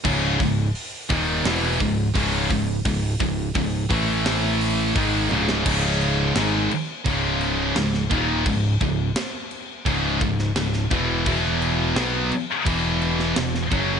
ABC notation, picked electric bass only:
X:1
M:4/4
L:1/8
Q:1/4=86
K:C#m
V:1 name="Picked electric bass" clef=bass
C,,, C,,, z D,,, E,,, C,,, C,,, C,,, | C,,, C,,, C,,, A,,,3 G,,, C,,, | C,,,2 G,,, z C,,,2 C,,, D,,, | C,,, C,,, z2 C,,, C,,, C,,, E,,, |
E,,,2 B,,, z E,,,2 E,,, F,,, |]